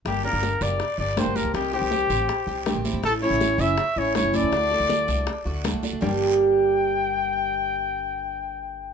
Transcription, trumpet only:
X:1
M:4/4
L:1/8
Q:1/4=161
K:Gm
V:1 name="Trumpet"
G B2 d2 d c B | G G6 z | A ^c2 =e2 c c d- | d6 z2 |
g8- | g8 |]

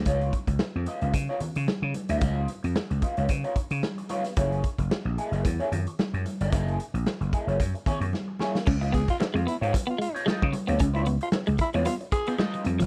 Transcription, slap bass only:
X:1
M:4/4
L:1/16
Q:"Swing 16ths" 1/4=112
K:Dbmix
V:1 name="Slap bass" clef=bass
D,,2 z D,, z F,, z D,, D, z2 D, z D, z =D,, | D,,2 z F,, z D,, z D,, D, z2 D, z4 | G,,,2 z G,,, z B,,, z G,,, _F,, z G,, z2 G,, z =G,,, | G,,,2 z B,,, z G,,, z G,,, G,, z2 G,, z4 |
D,,3 z2 F,, z A,, z4 z D, z =D,, | D,,3 z2 D,, z _F,, z6 =F,, =G,,, |]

